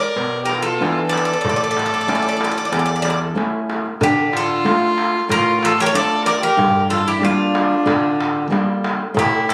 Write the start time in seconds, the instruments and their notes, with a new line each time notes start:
Already playing: violin A#4, bouzouki D5
0.01 darbuka tek
0.16 nylon-string guitar B2, darbuka tek
0.34 darbuka tek
0.45 violin G4, bouzouki A#4
0.49 darbuka tek
0.61 violin F4, bouzouki A4
0.80 nylon-string guitar E3 B3 D4, darbuka tek
0.98 darbuka tek
1.09 violin A4, bouzouki D5, darbuka tek
1.17 bouzouki D5
1.25 bouzouki D5
1.33 bouzouki D5
1.41 bouzouki D5, darbuka dum
1.45 nylon-string guitar A2
1.49 bouzouki D5
1.56 bouzouki D5
1.64 bouzouki D5
1.71 bouzouki D5
1.77 bouzouki D5, darbuka tek
1.86 bouzouki D5
1.93 bouzouki D5, darbuka tek
2.01 bouzouki D5
2.08 nylon-string guitar A3 C#4 E4, bouzouki D5, darbuka tek
2.15 bouzouki D5
2.22 bouzouki D5, darbuka tek
2.29 bouzouki D5
2.37 bouzouki D5
2.41 bouzouki D5, darbuka tek
2.51 bouzouki D5
2.58 bouzouki D5
2.65 bouzouki D5
2.72 nylon-string guitar E2, bouzouki D5, darbuka tek
2.79 bouzouki D5
2.86 bouzouki D5
2.96 bouzouki D5
3.02 bouzouki D5, darbuka tek
3.10 bouzouki D5
3.35 nylon-string guitar A3 C#4 E4, darbuka tek
3.70 darbuka tek
3.86 darbuka tek
4.01 nylon-string guitar D3, violin D4, bouzouki G4, darbuka dum
4.33 violin F4, bouzouki A4, darbuka tek
4.64 nylon-string guitar A3 D4 F4, darbuka tek
4.98 darbuka tek
5.29 nylon-string guitar A2, violin F4, bouzouki A#4, darbuka tek, darbuka dum
5.61 violin F4, bouzouki A4, darbuka tek
5.77 violin A4, bouzouki C#5, darbuka tek
5.81 violin G4, bouzouki A#4
5.86 violin A4, bouzouki C#5
5.94 nylon-string guitar A3 D4 F4, violin A4, bouzouki D5, darbuka tek
6.25 violin A#4, bouzouki D5, darbuka tek
6.42 violin G4, bouzouki A#4
6.57 nylon-string guitar G2, darbuka dum
6.90 violin F4, bouzouki A4, darbuka tek
7.07 violin E4, bouzouki G4
7.21 nylon-string guitar G3 A#3 D4, violin D4, bouzouki F4, darbuka tek
7.55 darbuka tek
7.86 nylon-string guitar D3, darbuka tek, darbuka dum
8.21 darbuka tek
8.37 darbuka tek
8.50 nylon-string guitar G3 A#3 D4, darbuka tek
8.84 darbuka tek
9.14 nylon-string guitar A2, violin E4, darbuka dum
9.19 bouzouki G4
9.49 violin E4, bouzouki A4, darbuka tek